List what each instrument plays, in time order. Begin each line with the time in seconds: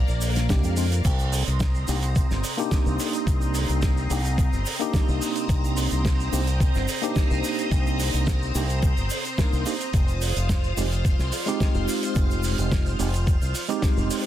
Already playing: string machine A#3 A#4 D5 F5
0.08 fingered electric bass A#1, shaker
0.21 open hi-hat, shaker
0.36 snare, closed hi-hat, shaker
0.49 tine electric piano G#3 C4 D4 G4, kick, snare, closed hi-hat, shaker
0.64 fingered electric bass F2, closed hi-hat, shaker
0.77 tine electric piano G#3 C4 D4 F4, open hi-hat, shaker
0.91 closed hi-hat, shaker
0.93 shaker
1.04 fingered electric bass C2, string machine C4 C5 A#5 D#6, kick, closed hi-hat, crash, shaker
1.19 shaker
1.33 open hi-hat, shaker
1.47 fingered electric bass C2, closed hi-hat, shaker
1.60 kick, snare, closed hi-hat, shaker
1.75 shaker
1.88 fingered electric bass C2, tine electric piano A#3 D4 D#4 G4, open hi-hat, shaker
2.02 closed hi-hat, shaker
2.16 kick, closed hi-hat, shaker
2.30 fingered electric bass G1, snare, shaker
2.44 open hi-hat, shaker
2.57 tine electric piano A#3 D4 D#4 G4, closed hi-hat, shaker
2.71 kick, snare, closed hi-hat, shaker
2.86 fingered electric bass C2, shaker
2.99 open hi-hat, shaker
3.13 closed hi-hat, shaker
3.27 fingered electric bass C2, kick, closed hi-hat, shaker
3.41 shaker
3.54 open hi-hat, shaker
3.69 fingered electric bass C2, closed hi-hat, shaker
3.82 kick, snare, closed hi-hat, shaker
3.97 shaker
4.10 fingered electric bass C2, tine electric piano A#3 D4 D#4 G4, open hi-hat, shaker
4.25 closed hi-hat, shaker
4.38 kick, closed hi-hat, shaker
4.53 fingered electric bass G1, shaker
4.66 open hi-hat, shaker
4.79 tine electric piano A#3 D4 D#4 G4, closed hi-hat, shaker
4.94 kick, snare, closed hi-hat, shaker
5.08 fingered electric bass C2, shaker
5.22 open hi-hat, shaker
5.36 closed hi-hat, shaker
5.49 fingered electric bass C2, kick, closed hi-hat, shaker
5.64 shaker
5.77 open hi-hat, shaker
5.91 fingered electric bass C2, closed hi-hat, shaker
6.05 kick, snare, closed hi-hat, shaker
6.20 shaker
6.32 fingered electric bass C2, tine electric piano A#3 D4 D#4 G4, open hi-hat, shaker
6.47 closed hi-hat, shaker
6.60 kick, closed hi-hat, shaker
6.74 fingered electric bass G1, snare, shaker
6.88 open hi-hat, shaker
7.02 tine electric piano A#3 D4 D#4 G4, closed hi-hat, shaker
7.15 kick, snare, closed hi-hat, shaker
7.31 fingered electric bass C2, shaker
7.44 open hi-hat, shaker
7.59 closed hi-hat, shaker
7.71 fingered electric bass C2, kick, closed hi-hat, shaker
7.86 shaker
7.99 open hi-hat, shaker
8.14 fingered electric bass C2, closed hi-hat, shaker
8.27 kick, snare, closed hi-hat, shaker
8.42 shaker
8.55 fingered electric bass C2, tine electric piano A#3 D4 D#4 G4, open hi-hat, shaker
8.69 closed hi-hat, shaker
8.82 kick, closed hi-hat, shaker
8.97 fingered electric bass G1, shaker
9.10 open hi-hat, shaker
9.25 closed hi-hat, shaker
9.38 tine electric piano A#3 D4 D#4 A#4, kick, snare, closed hi-hat, shaker
9.53 fingered electric bass C2, shaker
9.66 tine electric piano A#3 D4 D#4 G4, open hi-hat, shaker
9.80 closed hi-hat, shaker
9.93 fingered electric bass F1, string machine F4 F5, kick, closed hi-hat, shaker
10.08 shaker
10.21 open hi-hat, shaker
10.36 fingered electric bass F1, closed hi-hat, shaker
10.49 kick, snare, closed hi-hat, shaker
10.64 shaker
10.77 fingered electric bass F1, tine electric piano G#3 C4 D#4 G4, open hi-hat, shaker
10.91 closed hi-hat, shaker
11.05 kick, closed hi-hat, shaker
11.19 fingered electric bass C2, snare, shaker
11.32 open hi-hat, shaker
11.46 tine electric piano G#3 C4 D#4 G4, closed hi-hat, shaker
11.60 kick, snare, closed hi-hat, shaker
11.74 fingered electric bass F1, shaker
11.88 open hi-hat, shaker
12.03 closed hi-hat, shaker
12.15 fingered electric bass F1, kick, closed hi-hat, shaker
12.31 shaker
12.43 open hi-hat, shaker
12.58 fingered electric bass F1, closed hi-hat, shaker
12.72 kick, snare, closed hi-hat, shaker
12.86 shaker
12.99 fingered electric bass F1, tine electric piano G#3 C4 D#4 G4, open hi-hat, shaker
13.14 closed hi-hat, shaker
13.27 kick, closed hi-hat, shaker
13.42 fingered electric bass C2, shaker
13.55 open hi-hat, shaker
13.68 tine electric piano G#3 C4 D#4 G4, closed hi-hat, shaker
13.82 kick, snare, closed hi-hat, shaker
13.97 fingered electric bass F1, shaker
14.10 open hi-hat, shaker